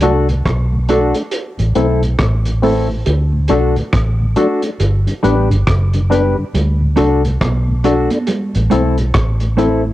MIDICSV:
0, 0, Header, 1, 7, 480
1, 0, Start_track
1, 0, Tempo, 868810
1, 1694, Time_signature, 4, 2, 24, 8
1, 5488, End_track
2, 0, Start_track
2, 0, Title_t, "Synth stab"
2, 0, Program_c, 0, 62
2, 10, Note_on_c, 0, 62, 92
2, 15, Note_on_c, 0, 66, 84
2, 18, Note_on_c, 0, 69, 111
2, 153, Note_off_c, 0, 62, 0
2, 155, Note_off_c, 0, 66, 0
2, 157, Note_off_c, 0, 69, 0
2, 491, Note_on_c, 0, 62, 92
2, 495, Note_on_c, 0, 66, 88
2, 499, Note_on_c, 0, 69, 98
2, 634, Note_off_c, 0, 62, 0
2, 636, Note_off_c, 0, 66, 0
2, 638, Note_off_c, 0, 69, 0
2, 970, Note_on_c, 0, 60, 96
2, 974, Note_on_c, 0, 64, 85
2, 977, Note_on_c, 0, 69, 99
2, 1113, Note_off_c, 0, 60, 0
2, 1115, Note_off_c, 0, 64, 0
2, 1117, Note_off_c, 0, 69, 0
2, 1449, Note_on_c, 0, 60, 92
2, 1453, Note_on_c, 0, 64, 84
2, 1456, Note_on_c, 0, 69, 99
2, 1593, Note_off_c, 0, 60, 0
2, 1594, Note_off_c, 0, 64, 0
2, 1596, Note_off_c, 0, 69, 0
2, 1930, Note_on_c, 0, 62, 92
2, 1933, Note_on_c, 0, 66, 87
2, 1936, Note_on_c, 0, 69, 98
2, 2073, Note_off_c, 0, 62, 0
2, 2075, Note_off_c, 0, 66, 0
2, 2076, Note_off_c, 0, 69, 0
2, 2410, Note_on_c, 0, 62, 88
2, 2412, Note_on_c, 0, 66, 84
2, 2416, Note_on_c, 0, 69, 111
2, 2553, Note_off_c, 0, 62, 0
2, 2554, Note_off_c, 0, 66, 0
2, 2556, Note_off_c, 0, 69, 0
2, 2888, Note_on_c, 0, 62, 89
2, 2892, Note_on_c, 0, 67, 93
2, 2895, Note_on_c, 0, 71, 98
2, 3032, Note_off_c, 0, 62, 0
2, 3034, Note_off_c, 0, 67, 0
2, 3036, Note_off_c, 0, 71, 0
2, 3369, Note_on_c, 0, 62, 87
2, 3372, Note_on_c, 0, 67, 81
2, 3377, Note_on_c, 0, 71, 102
2, 3513, Note_off_c, 0, 62, 0
2, 3515, Note_off_c, 0, 67, 0
2, 3517, Note_off_c, 0, 71, 0
2, 3849, Note_on_c, 0, 62, 89
2, 3853, Note_on_c, 0, 66, 84
2, 3855, Note_on_c, 0, 69, 109
2, 3993, Note_off_c, 0, 62, 0
2, 3995, Note_off_c, 0, 66, 0
2, 3996, Note_off_c, 0, 69, 0
2, 4332, Note_on_c, 0, 62, 94
2, 4335, Note_on_c, 0, 66, 86
2, 4339, Note_on_c, 0, 69, 102
2, 4475, Note_off_c, 0, 62, 0
2, 4476, Note_off_c, 0, 66, 0
2, 4478, Note_off_c, 0, 69, 0
2, 4813, Note_on_c, 0, 60, 94
2, 4816, Note_on_c, 0, 64, 89
2, 4818, Note_on_c, 0, 69, 104
2, 4955, Note_off_c, 0, 60, 0
2, 4957, Note_off_c, 0, 64, 0
2, 4958, Note_off_c, 0, 69, 0
2, 5291, Note_on_c, 0, 60, 101
2, 5295, Note_on_c, 0, 64, 88
2, 5299, Note_on_c, 0, 69, 99
2, 5434, Note_off_c, 0, 60, 0
2, 5437, Note_off_c, 0, 64, 0
2, 5438, Note_off_c, 0, 69, 0
2, 5488, End_track
3, 0, Start_track
3, 0, Title_t, "Clean electric guitar"
3, 0, Program_c, 1, 27
3, 12, Note_on_c, 1, 57, 75
3, 14, Note_on_c, 1, 62, 85
3, 17, Note_on_c, 1, 66, 75
3, 21, Note_on_c, 1, 69, 82
3, 140, Note_off_c, 1, 57, 0
3, 141, Note_off_c, 1, 62, 0
3, 142, Note_off_c, 1, 66, 0
3, 144, Note_off_c, 1, 69, 0
3, 491, Note_on_c, 1, 57, 77
3, 496, Note_on_c, 1, 62, 95
3, 499, Note_on_c, 1, 66, 94
3, 500, Note_on_c, 1, 69, 98
3, 620, Note_off_c, 1, 57, 0
3, 622, Note_off_c, 1, 62, 0
3, 623, Note_off_c, 1, 66, 0
3, 624, Note_off_c, 1, 69, 0
3, 972, Note_on_c, 1, 57, 78
3, 976, Note_on_c, 1, 60, 83
3, 978, Note_on_c, 1, 64, 81
3, 981, Note_on_c, 1, 69, 85
3, 1100, Note_off_c, 1, 57, 0
3, 1102, Note_off_c, 1, 60, 0
3, 1103, Note_off_c, 1, 64, 0
3, 1104, Note_off_c, 1, 69, 0
3, 1455, Note_on_c, 1, 57, 74
3, 1458, Note_on_c, 1, 60, 67
3, 1460, Note_on_c, 1, 64, 70
3, 1461, Note_on_c, 1, 69, 69
3, 1581, Note_off_c, 1, 57, 0
3, 1583, Note_off_c, 1, 60, 0
3, 1584, Note_off_c, 1, 64, 0
3, 1584, Note_off_c, 1, 69, 0
3, 1933, Note_on_c, 1, 57, 101
3, 1936, Note_on_c, 1, 62, 94
3, 1938, Note_on_c, 1, 66, 100
3, 1941, Note_on_c, 1, 69, 94
3, 2061, Note_off_c, 1, 57, 0
3, 2062, Note_off_c, 1, 62, 0
3, 2063, Note_off_c, 1, 66, 0
3, 2065, Note_off_c, 1, 69, 0
3, 2413, Note_on_c, 1, 57, 75
3, 2417, Note_on_c, 1, 62, 88
3, 2417, Note_on_c, 1, 66, 81
3, 2421, Note_on_c, 1, 69, 90
3, 2541, Note_off_c, 1, 57, 0
3, 2543, Note_off_c, 1, 62, 0
3, 2543, Note_off_c, 1, 66, 0
3, 2545, Note_off_c, 1, 69, 0
3, 2888, Note_on_c, 1, 55, 93
3, 2893, Note_on_c, 1, 59, 98
3, 2894, Note_on_c, 1, 62, 93
3, 2897, Note_on_c, 1, 67, 89
3, 3019, Note_off_c, 1, 55, 0
3, 3021, Note_off_c, 1, 59, 0
3, 3022, Note_off_c, 1, 62, 0
3, 3023, Note_off_c, 1, 67, 0
3, 3373, Note_on_c, 1, 55, 74
3, 3376, Note_on_c, 1, 59, 68
3, 3379, Note_on_c, 1, 62, 73
3, 3382, Note_on_c, 1, 67, 72
3, 3501, Note_off_c, 1, 55, 0
3, 3503, Note_off_c, 1, 59, 0
3, 3504, Note_off_c, 1, 62, 0
3, 3505, Note_off_c, 1, 67, 0
3, 3846, Note_on_c, 1, 57, 88
3, 3851, Note_on_c, 1, 62, 84
3, 3853, Note_on_c, 1, 66, 91
3, 3855, Note_on_c, 1, 69, 96
3, 3977, Note_off_c, 1, 57, 0
3, 3980, Note_off_c, 1, 62, 0
3, 3981, Note_off_c, 1, 66, 0
3, 3982, Note_off_c, 1, 69, 0
3, 4332, Note_on_c, 1, 57, 88
3, 4333, Note_on_c, 1, 62, 85
3, 4337, Note_on_c, 1, 66, 96
3, 4340, Note_on_c, 1, 69, 102
3, 4461, Note_off_c, 1, 57, 0
3, 4461, Note_off_c, 1, 62, 0
3, 4463, Note_off_c, 1, 66, 0
3, 4464, Note_off_c, 1, 69, 0
3, 4807, Note_on_c, 1, 57, 77
3, 4810, Note_on_c, 1, 60, 82
3, 4814, Note_on_c, 1, 64, 82
3, 4815, Note_on_c, 1, 69, 89
3, 4938, Note_off_c, 1, 57, 0
3, 4940, Note_off_c, 1, 60, 0
3, 4942, Note_off_c, 1, 64, 0
3, 4942, Note_off_c, 1, 69, 0
3, 5287, Note_on_c, 1, 57, 78
3, 5289, Note_on_c, 1, 60, 82
3, 5293, Note_on_c, 1, 64, 87
3, 5294, Note_on_c, 1, 69, 80
3, 5418, Note_off_c, 1, 57, 0
3, 5419, Note_off_c, 1, 60, 0
3, 5421, Note_off_c, 1, 64, 0
3, 5422, Note_off_c, 1, 69, 0
3, 5488, End_track
4, 0, Start_track
4, 0, Title_t, "Tonewheel organ"
4, 0, Program_c, 2, 16
4, 16, Note_on_c, 2, 54, 79
4, 18, Note_on_c, 2, 57, 72
4, 18, Note_on_c, 2, 62, 85
4, 74, Note_off_c, 2, 54, 0
4, 75, Note_off_c, 2, 57, 0
4, 75, Note_off_c, 2, 62, 0
4, 159, Note_on_c, 2, 38, 60
4, 160, Note_on_c, 2, 45, 58
4, 198, Note_off_c, 2, 38, 0
4, 198, Note_off_c, 2, 45, 0
4, 400, Note_on_c, 2, 45, 53
4, 403, Note_on_c, 2, 38, 53
4, 438, Note_off_c, 2, 45, 0
4, 440, Note_off_c, 2, 38, 0
4, 494, Note_on_c, 2, 54, 70
4, 497, Note_on_c, 2, 57, 68
4, 499, Note_on_c, 2, 62, 83
4, 553, Note_off_c, 2, 54, 0
4, 554, Note_off_c, 2, 57, 0
4, 555, Note_off_c, 2, 62, 0
4, 637, Note_on_c, 2, 57, 68
4, 642, Note_on_c, 2, 62, 83
4, 677, Note_off_c, 2, 57, 0
4, 679, Note_off_c, 2, 62, 0
4, 876, Note_on_c, 2, 45, 51
4, 916, Note_off_c, 2, 45, 0
4, 971, Note_on_c, 2, 52, 67
4, 972, Note_on_c, 2, 57, 66
4, 974, Note_on_c, 2, 60, 71
4, 1031, Note_off_c, 2, 52, 0
4, 1032, Note_off_c, 2, 57, 0
4, 1033, Note_off_c, 2, 60, 0
4, 1117, Note_on_c, 2, 45, 60
4, 1157, Note_off_c, 2, 45, 0
4, 1359, Note_on_c, 2, 45, 59
4, 1398, Note_off_c, 2, 45, 0
4, 1452, Note_on_c, 2, 52, 78
4, 1453, Note_on_c, 2, 57, 68
4, 1454, Note_on_c, 2, 60, 85
4, 1512, Note_off_c, 2, 52, 0
4, 1513, Note_off_c, 2, 57, 0
4, 1513, Note_off_c, 2, 60, 0
4, 1600, Note_on_c, 2, 45, 60
4, 1638, Note_off_c, 2, 45, 0
4, 1836, Note_on_c, 2, 38, 56
4, 1839, Note_on_c, 2, 45, 52
4, 1876, Note_off_c, 2, 38, 0
4, 1878, Note_off_c, 2, 45, 0
4, 1928, Note_on_c, 2, 54, 81
4, 1930, Note_on_c, 2, 57, 74
4, 1933, Note_on_c, 2, 62, 91
4, 1990, Note_off_c, 2, 54, 0
4, 1991, Note_off_c, 2, 57, 0
4, 1993, Note_off_c, 2, 62, 0
4, 2076, Note_on_c, 2, 45, 64
4, 2079, Note_on_c, 2, 38, 62
4, 2117, Note_off_c, 2, 45, 0
4, 2118, Note_off_c, 2, 38, 0
4, 2319, Note_on_c, 2, 38, 57
4, 2319, Note_on_c, 2, 45, 54
4, 2358, Note_off_c, 2, 38, 0
4, 2358, Note_off_c, 2, 45, 0
4, 2412, Note_on_c, 2, 54, 80
4, 2415, Note_on_c, 2, 57, 71
4, 2417, Note_on_c, 2, 62, 78
4, 2472, Note_off_c, 2, 54, 0
4, 2474, Note_off_c, 2, 57, 0
4, 2474, Note_off_c, 2, 62, 0
4, 2558, Note_on_c, 2, 57, 72
4, 2563, Note_on_c, 2, 62, 82
4, 2598, Note_off_c, 2, 57, 0
4, 2600, Note_off_c, 2, 62, 0
4, 2798, Note_on_c, 2, 43, 56
4, 2799, Note_on_c, 2, 50, 58
4, 2838, Note_off_c, 2, 43, 0
4, 2838, Note_off_c, 2, 50, 0
4, 2898, Note_on_c, 2, 55, 72
4, 2898, Note_on_c, 2, 59, 62
4, 2901, Note_on_c, 2, 62, 83
4, 2955, Note_off_c, 2, 55, 0
4, 2955, Note_off_c, 2, 59, 0
4, 2957, Note_off_c, 2, 62, 0
4, 3038, Note_on_c, 2, 50, 65
4, 3040, Note_on_c, 2, 43, 61
4, 3077, Note_off_c, 2, 50, 0
4, 3078, Note_off_c, 2, 43, 0
4, 3284, Note_on_c, 2, 43, 58
4, 3285, Note_on_c, 2, 50, 59
4, 3320, Note_off_c, 2, 43, 0
4, 3321, Note_off_c, 2, 50, 0
4, 3376, Note_on_c, 2, 55, 75
4, 3379, Note_on_c, 2, 59, 65
4, 3381, Note_on_c, 2, 62, 79
4, 3434, Note_off_c, 2, 55, 0
4, 3436, Note_off_c, 2, 59, 0
4, 3437, Note_off_c, 2, 62, 0
4, 3524, Note_on_c, 2, 43, 60
4, 3524, Note_on_c, 2, 50, 62
4, 3561, Note_off_c, 2, 43, 0
4, 3561, Note_off_c, 2, 50, 0
4, 3762, Note_on_c, 2, 38, 51
4, 3763, Note_on_c, 2, 45, 55
4, 3800, Note_off_c, 2, 38, 0
4, 3800, Note_off_c, 2, 45, 0
4, 3859, Note_on_c, 2, 54, 82
4, 3862, Note_on_c, 2, 57, 77
4, 3862, Note_on_c, 2, 62, 86
4, 3916, Note_off_c, 2, 54, 0
4, 3917, Note_off_c, 2, 57, 0
4, 3917, Note_off_c, 2, 62, 0
4, 4002, Note_on_c, 2, 38, 55
4, 4004, Note_on_c, 2, 45, 60
4, 4040, Note_off_c, 2, 38, 0
4, 4041, Note_off_c, 2, 45, 0
4, 4244, Note_on_c, 2, 38, 54
4, 4244, Note_on_c, 2, 45, 59
4, 4281, Note_off_c, 2, 38, 0
4, 4281, Note_off_c, 2, 45, 0
4, 4342, Note_on_c, 2, 54, 72
4, 4343, Note_on_c, 2, 57, 74
4, 4344, Note_on_c, 2, 62, 77
4, 4397, Note_off_c, 2, 54, 0
4, 4398, Note_off_c, 2, 57, 0
4, 4398, Note_off_c, 2, 62, 0
4, 4485, Note_on_c, 2, 57, 71
4, 4488, Note_on_c, 2, 62, 81
4, 4521, Note_off_c, 2, 57, 0
4, 4523, Note_off_c, 2, 62, 0
4, 4726, Note_on_c, 2, 45, 57
4, 4762, Note_off_c, 2, 45, 0
4, 4815, Note_on_c, 2, 52, 76
4, 4815, Note_on_c, 2, 57, 66
4, 4818, Note_on_c, 2, 60, 75
4, 4874, Note_off_c, 2, 52, 0
4, 4874, Note_off_c, 2, 57, 0
4, 4876, Note_off_c, 2, 60, 0
4, 4962, Note_on_c, 2, 45, 63
4, 5000, Note_off_c, 2, 45, 0
4, 5203, Note_on_c, 2, 45, 58
4, 5241, Note_off_c, 2, 45, 0
4, 5296, Note_on_c, 2, 52, 73
4, 5297, Note_on_c, 2, 57, 69
4, 5298, Note_on_c, 2, 60, 81
4, 5355, Note_off_c, 2, 52, 0
4, 5355, Note_off_c, 2, 57, 0
4, 5356, Note_off_c, 2, 60, 0
4, 5442, Note_on_c, 2, 45, 60
4, 5480, Note_off_c, 2, 45, 0
4, 5488, End_track
5, 0, Start_track
5, 0, Title_t, "Fingered electric bass"
5, 0, Program_c, 3, 33
5, 20, Note_on_c, 3, 36, 77
5, 244, Note_off_c, 3, 36, 0
5, 255, Note_on_c, 3, 35, 97
5, 618, Note_off_c, 3, 35, 0
5, 882, Note_on_c, 3, 33, 93
5, 971, Note_off_c, 3, 33, 0
5, 974, Note_on_c, 3, 35, 94
5, 1201, Note_off_c, 3, 35, 0
5, 1215, Note_on_c, 3, 33, 88
5, 1673, Note_off_c, 3, 33, 0
5, 1697, Note_on_c, 3, 38, 113
5, 1922, Note_off_c, 3, 38, 0
5, 1937, Note_on_c, 3, 35, 90
5, 2073, Note_off_c, 3, 35, 0
5, 2177, Note_on_c, 3, 33, 86
5, 2403, Note_off_c, 3, 33, 0
5, 2654, Note_on_c, 3, 31, 98
5, 2791, Note_off_c, 3, 31, 0
5, 2898, Note_on_c, 3, 33, 94
5, 3033, Note_off_c, 3, 33, 0
5, 3044, Note_on_c, 3, 31, 94
5, 3132, Note_off_c, 3, 31, 0
5, 3138, Note_on_c, 3, 30, 102
5, 3500, Note_off_c, 3, 30, 0
5, 3619, Note_on_c, 3, 38, 113
5, 3844, Note_off_c, 3, 38, 0
5, 3861, Note_on_c, 3, 36, 83
5, 4085, Note_off_c, 3, 36, 0
5, 4098, Note_on_c, 3, 35, 94
5, 4460, Note_off_c, 3, 35, 0
5, 4727, Note_on_c, 3, 33, 92
5, 4814, Note_off_c, 3, 33, 0
5, 4820, Note_on_c, 3, 35, 96
5, 5044, Note_off_c, 3, 35, 0
5, 5059, Note_on_c, 3, 33, 87
5, 5488, Note_off_c, 3, 33, 0
5, 5488, End_track
6, 0, Start_track
6, 0, Title_t, "Muted clean electric guitar strokes"
6, 1601, Note_on_c, 9, 29, 38
6, 1656, Note_off_c, 9, 29, 0
6, 3515, Note_on_c, 9, 29, 48
6, 3571, Note_off_c, 9, 29, 0
6, 5437, Note_on_c, 9, 29, 43
6, 5488, Note_off_c, 9, 29, 0
6, 5488, End_track
7, 0, Start_track
7, 0, Title_t, "Drums"
7, 3, Note_on_c, 9, 42, 82
7, 58, Note_off_c, 9, 42, 0
7, 160, Note_on_c, 9, 42, 46
7, 215, Note_off_c, 9, 42, 0
7, 252, Note_on_c, 9, 36, 114
7, 252, Note_on_c, 9, 37, 102
7, 256, Note_on_c, 9, 42, 70
7, 307, Note_off_c, 9, 36, 0
7, 307, Note_off_c, 9, 37, 0
7, 311, Note_off_c, 9, 42, 0
7, 490, Note_on_c, 9, 42, 74
7, 545, Note_off_c, 9, 42, 0
7, 633, Note_on_c, 9, 42, 59
7, 688, Note_off_c, 9, 42, 0
7, 726, Note_on_c, 9, 42, 89
7, 781, Note_off_c, 9, 42, 0
7, 878, Note_on_c, 9, 42, 51
7, 934, Note_off_c, 9, 42, 0
7, 969, Note_on_c, 9, 42, 64
7, 1024, Note_off_c, 9, 42, 0
7, 1120, Note_on_c, 9, 42, 47
7, 1175, Note_off_c, 9, 42, 0
7, 1208, Note_on_c, 9, 37, 104
7, 1209, Note_on_c, 9, 42, 85
7, 1212, Note_on_c, 9, 36, 91
7, 1264, Note_off_c, 9, 37, 0
7, 1264, Note_off_c, 9, 42, 0
7, 1267, Note_off_c, 9, 36, 0
7, 1356, Note_on_c, 9, 42, 50
7, 1411, Note_off_c, 9, 42, 0
7, 1454, Note_on_c, 9, 46, 45
7, 1509, Note_off_c, 9, 46, 0
7, 1690, Note_on_c, 9, 42, 79
7, 1746, Note_off_c, 9, 42, 0
7, 1922, Note_on_c, 9, 42, 70
7, 1977, Note_off_c, 9, 42, 0
7, 2079, Note_on_c, 9, 42, 48
7, 2134, Note_off_c, 9, 42, 0
7, 2170, Note_on_c, 9, 37, 104
7, 2172, Note_on_c, 9, 36, 115
7, 2174, Note_on_c, 9, 42, 78
7, 2225, Note_off_c, 9, 37, 0
7, 2227, Note_off_c, 9, 36, 0
7, 2229, Note_off_c, 9, 42, 0
7, 2409, Note_on_c, 9, 42, 68
7, 2464, Note_off_c, 9, 42, 0
7, 2555, Note_on_c, 9, 42, 62
7, 2610, Note_off_c, 9, 42, 0
7, 2650, Note_on_c, 9, 42, 81
7, 2706, Note_off_c, 9, 42, 0
7, 2803, Note_on_c, 9, 42, 53
7, 2858, Note_off_c, 9, 42, 0
7, 2896, Note_on_c, 9, 42, 65
7, 2951, Note_off_c, 9, 42, 0
7, 3045, Note_on_c, 9, 42, 52
7, 3100, Note_off_c, 9, 42, 0
7, 3133, Note_on_c, 9, 37, 110
7, 3134, Note_on_c, 9, 42, 94
7, 3135, Note_on_c, 9, 36, 93
7, 3188, Note_off_c, 9, 37, 0
7, 3189, Note_off_c, 9, 42, 0
7, 3190, Note_off_c, 9, 36, 0
7, 3278, Note_on_c, 9, 42, 51
7, 3334, Note_off_c, 9, 42, 0
7, 3380, Note_on_c, 9, 42, 65
7, 3435, Note_off_c, 9, 42, 0
7, 3615, Note_on_c, 9, 64, 68
7, 3618, Note_on_c, 9, 42, 75
7, 3671, Note_off_c, 9, 64, 0
7, 3673, Note_off_c, 9, 42, 0
7, 3850, Note_on_c, 9, 42, 73
7, 3905, Note_off_c, 9, 42, 0
7, 4005, Note_on_c, 9, 42, 50
7, 4060, Note_off_c, 9, 42, 0
7, 4095, Note_on_c, 9, 36, 106
7, 4096, Note_on_c, 9, 37, 101
7, 4096, Note_on_c, 9, 63, 55
7, 4100, Note_on_c, 9, 42, 78
7, 4150, Note_off_c, 9, 36, 0
7, 4151, Note_off_c, 9, 37, 0
7, 4151, Note_off_c, 9, 63, 0
7, 4155, Note_off_c, 9, 42, 0
7, 4333, Note_on_c, 9, 42, 79
7, 4388, Note_off_c, 9, 42, 0
7, 4477, Note_on_c, 9, 42, 60
7, 4480, Note_on_c, 9, 63, 64
7, 4533, Note_off_c, 9, 42, 0
7, 4535, Note_off_c, 9, 63, 0
7, 4568, Note_on_c, 9, 42, 77
7, 4576, Note_on_c, 9, 64, 71
7, 4623, Note_off_c, 9, 42, 0
7, 4631, Note_off_c, 9, 64, 0
7, 4722, Note_on_c, 9, 42, 54
7, 4777, Note_off_c, 9, 42, 0
7, 4812, Note_on_c, 9, 42, 61
7, 4813, Note_on_c, 9, 64, 59
7, 4867, Note_off_c, 9, 42, 0
7, 4869, Note_off_c, 9, 64, 0
7, 4959, Note_on_c, 9, 42, 55
7, 5014, Note_off_c, 9, 42, 0
7, 5050, Note_on_c, 9, 37, 112
7, 5051, Note_on_c, 9, 42, 87
7, 5053, Note_on_c, 9, 36, 104
7, 5105, Note_off_c, 9, 37, 0
7, 5106, Note_off_c, 9, 42, 0
7, 5109, Note_off_c, 9, 36, 0
7, 5194, Note_on_c, 9, 42, 50
7, 5249, Note_off_c, 9, 42, 0
7, 5295, Note_on_c, 9, 42, 60
7, 5350, Note_off_c, 9, 42, 0
7, 5488, End_track
0, 0, End_of_file